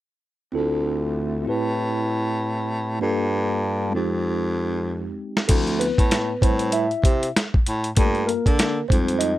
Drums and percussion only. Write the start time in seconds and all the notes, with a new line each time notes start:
5.37 snare
5.49 kick, closed hi-hat, crash
5.67 closed hi-hat
5.81 closed hi-hat
5.98 kick, closed hi-hat
6.11 snare, closed hi-hat
6.42 kick, closed hi-hat
6.59 closed hi-hat
6.72 closed hi-hat
6.91 closed hi-hat
7.04 kick, closed hi-hat
7.23 closed hi-hat
7.36 snare, closed hi-hat
7.54 kick
7.66 closed hi-hat
7.84 closed hi-hat
7.97 kick, closed hi-hat
8.15 closed hi-hat
8.29 closed hi-hat
8.46 kick, closed hi-hat
8.59 snare, closed hi-hat
8.90 kick, closed hi-hat
9.08 closed hi-hat
9.21 closed hi-hat